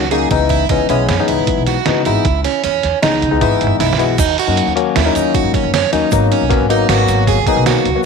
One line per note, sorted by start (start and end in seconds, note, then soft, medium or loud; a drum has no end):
0.00 0.28 C#2 medium
0.11 0.29 F#3 medium
0.11 0.29 A#3 medium
0.11 0.28 C#4 medium
0.11 0.28 D#4 medium
0.11 0.29 G#4 medium
0.11 closed hi-hat soft
0.31 0.67 C#2 loud
0.31 0.65 E3 medium
0.31 0.65 G#3 medium
0.31 0.64 B3 medium
0.31 0.64 D#4 medium
0.31 0.48 E4 medium
0.31 kick medium
0.31 closed hi-hat medium
0.49 0.67 E4 medium
0.49 kick medium
0.49 closed hi-hat medium
0.69 0.79 C#2 medium
0.69 0.87 E3 medium
0.69 0.87 G#3 medium
0.69 0.87 B3 medium
0.69 0.87 C#4 medium
0.69 0.87 D#4 medium
0.69 kick loud
0.69 closed hi-hat medium
0.89 1.07 B1 medium
0.89 1.14 E3 medium
0.89 1.14 G#3 medium
0.89 1.14 B3 medium
0.89 1.07 C#4 medium
0.89 1.14 E4 medium
0.89 closed hi-hat soft
1.09 1.18 F#2 medium
1.09 1.26 C#4 medium
1.09 snare medium
1.09 closed hi-hat medium
1.20 1.77 E3 medium
1.20 1.77 G#3 medium
1.20 1.77 B3 medium
1.20 1.77 D#4 medium
1.28 1.38 C#2 medium
1.28 1.63 E4 medium
1.28 closed hi-hat medium
1.39 1.47 F#2 medium
1.47 kick loud
1.47 closed hi-hat medium
1.58 1.75 B1 medium
1.67 2.01 F#4 medium
1.67 snare soft
1.67 closed hi-hat medium
1.86 2.04 C#3 medium
1.86 2.03 E3 medium
1.86 2.03 G#3 medium
1.86 2.03 B3 medium
1.86 2.03 D#4 medium
1.86 snare medium
1.86 closed hi-hat medium
2.05 2.15 G#1 medium
2.05 2.25 E3 medium
2.05 2.25 G#3 medium
2.05 2.25 B3 medium
2.05 2.25 D#4 medium
2.05 2.40 E4 medium
2.05 closed hi-hat medium
2.25 2.43 C#2 medium
2.25 kick medium
2.25 closed hi-hat medium
2.44 2.62 C#4 medium
2.44 snare soft
2.44 closed hi-hat medium
2.64 2.82 E2 medium
2.64 2.98 C#4 medium
2.64 snare soft
2.64 closed hi-hat medium
2.83 2.93 E2 medium
2.83 snare soft
2.83 closed hi-hat medium
3.02 3.21 C#2 medium
3.02 3.27 E3 medium
3.02 3.27 G#3 medium
3.02 3.27 B3 medium
3.02 3.27 D#4 medium
3.02 3.37 D#4 medium
3.02 snare loud
3.02 closed hi-hat medium
3.22 3.31 C#3 medium
3.22 closed hi-hat medium
3.31 3.41 C#2 medium
3.31 3.40 E3 medium
3.31 3.40 G#3 medium
3.31 3.40 B3 medium
3.31 3.40 D#4 medium
3.41 3.50 G#1 medium
3.41 3.91 E3 medium
3.41 3.91 G#3 medium
3.41 3.91 B3 medium
3.41 3.91 D#4 medium
3.41 3.76 E4 medium
3.41 kick loud
3.41 closed hi-hat medium
3.61 3.70 G#1 medium
3.61 closed hi-hat medium
3.67 mid tom medium
3.80 4.16 B1 medium
3.80 3.97 E4 medium
3.80 snare medium
3.80 closed hi-hat medium
3.93 snare medium
3.98 4.15 E3 medium
3.98 4.16 G#3 medium
3.98 4.16 B3 medium
3.98 4.16 E4 medium
3.98 4.17 F#4 medium
3.98 closed hi-hat medium
4.18 4.36 D#2 medium
4.18 4.36 D#4 medium
4.18 kick loud
4.18 closed hi-hat medium
4.18 crash medium
4.18 shaker medium
4.38 4.73 F#4 medium
4.38 closed hi-hat medium
4.47 4.65 F#2 medium
4.47 4.72 F#3 medium
4.47 4.72 A#3 medium
4.47 4.72 C#4 medium
4.47 4.72 D#4 medium
4.57 closed hi-hat medium
4.67 4.94 D#2 medium
4.76 5.01 F#3 medium
4.76 5.01 A#3 medium
4.76 5.01 C#4 medium
4.76 5.01 F#4 medium
4.76 closed hi-hat medium
4.96 5.14 D#2 medium
4.96 5.13 E4 medium
4.96 snare loud
4.96 closed hi-hat medium
5.05 5.71 F#3 medium
5.05 5.71 A#3 medium
5.05 5.71 C#4 medium
5.05 5.71 D#4 medium
5.15 5.42 D#2 medium
5.15 5.33 D#4 medium
5.15 closed hi-hat medium
5.15 shaker soft
5.34 5.51 F#4 medium
5.34 kick loud
5.34 closed hi-hat medium
5.44 5.53 G#2 medium
5.54 5.71 C#4 medium
5.54 kick medium
5.54 closed hi-hat medium
5.64 5.81 F#2 medium
5.74 5.91 C#4 medium
5.74 snare loud
5.74 closed hi-hat medium
5.92 6.01 D#2 medium
5.92 6.09 F#3 medium
5.92 6.09 A#3 medium
5.92 6.09 C#4 medium
5.92 6.09 D#4 medium
5.92 6.27 D#4 medium
5.92 snare soft
5.92 closed hi-hat medium
6.12 6.30 G#1 medium
6.12 6.45 F#3 medium
6.12 6.45 A#3 medium
6.12 6.45 B3 medium
6.12 6.45 D#4 medium
6.12 kick loud
6.12 closed hi-hat medium
6.12 shaker soft
6.32 6.66 C#4 medium
6.32 closed hi-hat medium
6.41 6.59 B1 medium
6.49 6.66 F#3 medium
6.49 6.66 A#3 medium
6.49 6.66 B3 medium
6.49 6.66 C#4 medium
6.49 kick loud
6.49 snare soft
6.49 closed hi-hat medium
6.61 6.87 G#1 medium
6.69 6.86 F#3 medium
6.69 6.86 A#3 medium
6.69 6.86 B3 medium
6.69 6.86 D#4 medium
6.69 6.87 D#4 medium
6.69 closed hi-hat medium
6.89 7.07 G#1 medium
6.89 7.38 F#3 medium
6.89 7.38 A#3 medium
6.89 7.38 B3 medium
6.89 7.38 F#4 medium
6.89 7.23 F#4 medium
6.89 snare medium
6.89 closed hi-hat medium
7.08 7.35 G#1 medium
7.08 snare soft
7.08 closed hi-hat medium
7.08 shaker soft
7.27 7.45 G#4 medium
7.27 kick loud
7.27 snare soft
7.27 closed hi-hat medium
7.38 7.46 C#2 medium
7.47 7.88 F#3 medium
7.47 7.88 A#3 medium
7.47 7.88 B3 medium
7.47 7.88 D#4 medium
7.47 7.64 G#4 medium
7.47 kick medium
7.47 closed hi-hat medium
7.57 7.74 B1 medium
7.66 8.00 F#4 medium
7.66 snare loud
7.66 closed hi-hat medium
7.85 7.94 C#2 medium
7.85 closed hi-hat medium
7.95 8.05 F#3 medium
7.95 8.05 A#3 medium
7.95 8.05 B3 medium
7.95 8.05 F#4 medium